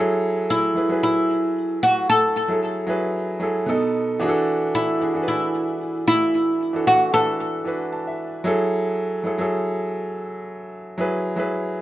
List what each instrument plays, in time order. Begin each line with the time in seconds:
Already playing: grand piano F#3 E4 G#4 A4
0.50 oud E4
0.74 grand piano F#3 E4 G#4 B4
0.89 grand piano F#3 E4 G#4 B4
1.03 oud E4
1.83 oud F#4
2.10 oud A4
2.48 grand piano F#3 E4 G#4 A4
2.87 grand piano F#3 E4 G#4 B4
3.40 grand piano F#3 E4 G#4 A4
3.66 grand piano B2 B3 D#4 A4
4.20 grand piano E3 D4 F#4 G#4
4.29 grand piano A4
4.75 oud E4
4.99 grand piano E3 D4 F#4 G#4
5.14 grand piano E3 D4 F#4 A4
5.23 grand piano B4
5.28 oud E4
6.08 oud E4
6.73 grand piano E3 D4 F#4 A4
6.87 oud F#4
7.11 grand piano E3 D4 F#4 B4, oud A4
7.64 grand piano E3 D4 F#4 B4
7.92 grand piano A5
8.07 grand piano E5
8.44 grand piano F#3 E4 G#4 A4
9.24 grand piano F#3 E4 G#4 A4
9.38 grand piano F#3 E4 G#4 A4
10.98 grand piano F#3 E4 G#4 B4
11.36 grand piano F#3 E4 G#4 B4